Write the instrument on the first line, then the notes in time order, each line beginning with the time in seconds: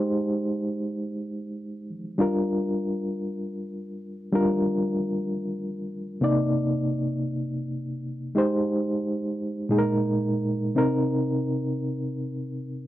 reed electric piano
Already playing: G#3 D#4 G4 C5
2.18 G3 D4 F4 A#4
4.32 G3 D4 F4 A#4
6.21 C3 A#3 D#4 D5
8.35 G#3 D#4 G4 C5
9.69 A#2 G#3 D#4 G#4
9.78 A#4
10.75 C3 C4 D#4 A#4